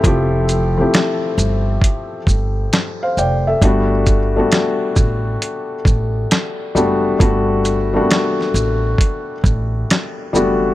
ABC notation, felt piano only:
X:1
M:4/4
L:1/16
Q:"Swing 16ths" 1/4=67
K:Gdor
V:1 name="Felt piano"
z12 z [cf] [dg] [Ae]- | [Ae] z12 z3 | z16 |]
V:2 name="Felt piano"
[F,A,CEG]2 z [F,A,CEG]6 z6 z | [G,A,=B,D^F]2 z [G,A,B,DF]6 z4 z [G,A,B,DF]2 | [G,A,=B,D^F]2 z [G,A,_B,=B,DF]6 z4 z [G,A,B,DF]2 |]